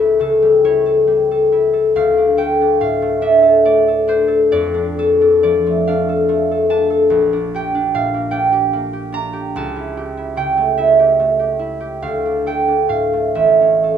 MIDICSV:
0, 0, Header, 1, 2, 480
1, 0, Start_track
1, 0, Key_signature, -1, "minor"
1, 0, Tempo, 867052
1, 1078, Time_signature, 6, 3, 24, 8
1, 1079, Tempo, 842697
1, 2039, Tempo, 895522
1, 2999, Tempo, 827586
1, 6839, Tempo, 896861
1, 7872, End_track
2, 0, Start_track
2, 0, Title_t, "Harp"
2, 0, Program_c, 0, 46
2, 0, Note_on_c, 0, 37, 45
2, 0, Note_on_c, 0, 64, 36
2, 0, Note_on_c, 0, 69, 57
2, 0, Note_on_c, 0, 73, 64
2, 105, Note_off_c, 0, 69, 0
2, 108, Note_on_c, 0, 49, 34
2, 114, Note_on_c, 0, 69, 63
2, 235, Note_on_c, 0, 55, 36
2, 348, Note_off_c, 0, 64, 0
2, 352, Note_off_c, 0, 73, 0
2, 355, Note_on_c, 0, 64, 35
2, 359, Note_on_c, 0, 73, 62
2, 468, Note_off_c, 0, 69, 0
2, 475, Note_on_c, 0, 69, 38
2, 587, Note_off_c, 0, 55, 0
2, 594, Note_on_c, 0, 55, 37
2, 720, Note_off_c, 0, 69, 0
2, 727, Note_on_c, 0, 69, 39
2, 836, Note_off_c, 0, 64, 0
2, 843, Note_on_c, 0, 64, 41
2, 953, Note_off_c, 0, 69, 0
2, 960, Note_on_c, 0, 69, 43
2, 1083, Note_on_c, 0, 38, 42
2, 1086, Note_on_c, 0, 77, 70
2, 1093, Note_off_c, 0, 49, 0
2, 1096, Note_off_c, 0, 55, 0
2, 1098, Note_off_c, 0, 37, 0
2, 1099, Note_off_c, 0, 73, 0
2, 1101, Note_off_c, 0, 64, 0
2, 1209, Note_on_c, 0, 62, 33
2, 1315, Note_off_c, 0, 69, 0
2, 1320, Note_on_c, 0, 69, 38
2, 1324, Note_on_c, 0, 79, 61
2, 1451, Note_off_c, 0, 62, 0
2, 1457, Note_on_c, 0, 62, 41
2, 1561, Note_off_c, 0, 77, 0
2, 1567, Note_on_c, 0, 45, 38
2, 1569, Note_on_c, 0, 77, 72
2, 1689, Note_on_c, 0, 57, 41
2, 1728, Note_off_c, 0, 79, 0
2, 1793, Note_off_c, 0, 62, 0
2, 1800, Note_on_c, 0, 62, 41
2, 1803, Note_on_c, 0, 76, 67
2, 1912, Note_off_c, 0, 69, 0
2, 1919, Note_on_c, 0, 69, 42
2, 2042, Note_off_c, 0, 57, 0
2, 2047, Note_on_c, 0, 57, 40
2, 2050, Note_on_c, 0, 74, 66
2, 2164, Note_off_c, 0, 69, 0
2, 2170, Note_on_c, 0, 69, 40
2, 2200, Note_off_c, 0, 76, 0
2, 2270, Note_off_c, 0, 62, 0
2, 2277, Note_on_c, 0, 62, 45
2, 2281, Note_on_c, 0, 72, 72
2, 2378, Note_off_c, 0, 69, 0
2, 2384, Note_on_c, 0, 69, 44
2, 2507, Note_off_c, 0, 74, 0
2, 2513, Note_on_c, 0, 74, 79
2, 2516, Note_on_c, 0, 41, 54
2, 2531, Note_off_c, 0, 38, 0
2, 2532, Note_off_c, 0, 45, 0
2, 2626, Note_off_c, 0, 62, 0
2, 2632, Note_on_c, 0, 62, 41
2, 2687, Note_off_c, 0, 72, 0
2, 2758, Note_off_c, 0, 69, 0
2, 2765, Note_on_c, 0, 69, 63
2, 2880, Note_off_c, 0, 62, 0
2, 2887, Note_on_c, 0, 62, 43
2, 2996, Note_off_c, 0, 74, 0
2, 3002, Note_on_c, 0, 74, 79
2, 3005, Note_on_c, 0, 53, 41
2, 3131, Note_off_c, 0, 57, 0
2, 3138, Note_on_c, 0, 57, 44
2, 3252, Note_off_c, 0, 77, 0
2, 3258, Note_off_c, 0, 62, 0
2, 3259, Note_on_c, 0, 77, 74
2, 3265, Note_on_c, 0, 62, 46
2, 3377, Note_off_c, 0, 69, 0
2, 3384, Note_on_c, 0, 69, 41
2, 3492, Note_off_c, 0, 57, 0
2, 3499, Note_on_c, 0, 57, 46
2, 3623, Note_off_c, 0, 69, 0
2, 3630, Note_on_c, 0, 69, 42
2, 3734, Note_off_c, 0, 62, 0
2, 3738, Note_on_c, 0, 81, 91
2, 3741, Note_on_c, 0, 62, 47
2, 3848, Note_off_c, 0, 69, 0
2, 3855, Note_on_c, 0, 69, 44
2, 3970, Note_on_c, 0, 34, 55
2, 3990, Note_off_c, 0, 69, 0
2, 3991, Note_off_c, 0, 41, 0
2, 3991, Note_off_c, 0, 53, 0
2, 3992, Note_off_c, 0, 57, 0
2, 3994, Note_off_c, 0, 77, 0
2, 4096, Note_off_c, 0, 62, 0
2, 4103, Note_on_c, 0, 62, 41
2, 4228, Note_on_c, 0, 67, 45
2, 4234, Note_on_c, 0, 79, 61
2, 4338, Note_off_c, 0, 62, 0
2, 4345, Note_on_c, 0, 62, 47
2, 4459, Note_on_c, 0, 46, 47
2, 4462, Note_on_c, 0, 77, 85
2, 4545, Note_off_c, 0, 81, 0
2, 4573, Note_on_c, 0, 58, 42
2, 4665, Note_off_c, 0, 79, 0
2, 4670, Note_off_c, 0, 62, 0
2, 4672, Note_on_c, 0, 79, 76
2, 4677, Note_on_c, 0, 62, 46
2, 4789, Note_off_c, 0, 67, 0
2, 4796, Note_on_c, 0, 67, 44
2, 4860, Note_off_c, 0, 77, 0
2, 4910, Note_off_c, 0, 58, 0
2, 4917, Note_on_c, 0, 58, 43
2, 5026, Note_off_c, 0, 67, 0
2, 5033, Note_on_c, 0, 67, 42
2, 5137, Note_off_c, 0, 62, 0
2, 5144, Note_on_c, 0, 62, 48
2, 5153, Note_on_c, 0, 82, 93
2, 5257, Note_off_c, 0, 67, 0
2, 5264, Note_off_c, 0, 74, 0
2, 5264, Note_on_c, 0, 67, 44
2, 5395, Note_on_c, 0, 37, 56
2, 5400, Note_on_c, 0, 81, 81
2, 5412, Note_off_c, 0, 62, 0
2, 5416, Note_off_c, 0, 82, 0
2, 5419, Note_off_c, 0, 58, 0
2, 5424, Note_off_c, 0, 34, 0
2, 5429, Note_off_c, 0, 46, 0
2, 5513, Note_on_c, 0, 64, 38
2, 5629, Note_off_c, 0, 67, 0
2, 5636, Note_on_c, 0, 67, 45
2, 5746, Note_off_c, 0, 64, 0
2, 5753, Note_on_c, 0, 64, 41
2, 5859, Note_off_c, 0, 79, 0
2, 5863, Note_on_c, 0, 49, 43
2, 5868, Note_on_c, 0, 79, 77
2, 5984, Note_on_c, 0, 57, 40
2, 6100, Note_off_c, 0, 64, 0
2, 6102, Note_on_c, 0, 76, 62
2, 6107, Note_on_c, 0, 64, 42
2, 6221, Note_off_c, 0, 67, 0
2, 6228, Note_on_c, 0, 67, 43
2, 6337, Note_off_c, 0, 57, 0
2, 6344, Note_on_c, 0, 57, 41
2, 6453, Note_off_c, 0, 67, 0
2, 6460, Note_on_c, 0, 67, 35
2, 6568, Note_off_c, 0, 64, 0
2, 6575, Note_on_c, 0, 64, 47
2, 6692, Note_off_c, 0, 67, 0
2, 6699, Note_on_c, 0, 67, 44
2, 6826, Note_on_c, 0, 38, 46
2, 6827, Note_on_c, 0, 77, 68
2, 6846, Note_off_c, 0, 64, 0
2, 6847, Note_off_c, 0, 67, 0
2, 6848, Note_off_c, 0, 49, 0
2, 6848, Note_off_c, 0, 76, 0
2, 6848, Note_off_c, 0, 79, 0
2, 6850, Note_off_c, 0, 37, 0
2, 6952, Note_on_c, 0, 62, 38
2, 7062, Note_on_c, 0, 69, 39
2, 7066, Note_on_c, 0, 79, 66
2, 7170, Note_off_c, 0, 62, 0
2, 7177, Note_on_c, 0, 62, 38
2, 7285, Note_off_c, 0, 77, 0
2, 7288, Note_on_c, 0, 45, 33
2, 7292, Note_on_c, 0, 77, 69
2, 7413, Note_off_c, 0, 57, 0
2, 7420, Note_on_c, 0, 57, 32
2, 7472, Note_off_c, 0, 79, 0
2, 7537, Note_on_c, 0, 33, 43
2, 7538, Note_on_c, 0, 76, 59
2, 7558, Note_off_c, 0, 45, 0
2, 7559, Note_off_c, 0, 77, 0
2, 7562, Note_off_c, 0, 38, 0
2, 7562, Note_off_c, 0, 62, 0
2, 7599, Note_off_c, 0, 81, 0
2, 7676, Note_on_c, 0, 61, 35
2, 7790, Note_off_c, 0, 69, 0
2, 7796, Note_on_c, 0, 69, 33
2, 7872, Note_off_c, 0, 33, 0
2, 7872, Note_off_c, 0, 57, 0
2, 7872, Note_off_c, 0, 61, 0
2, 7872, Note_off_c, 0, 69, 0
2, 7872, Note_off_c, 0, 76, 0
2, 7872, End_track
0, 0, End_of_file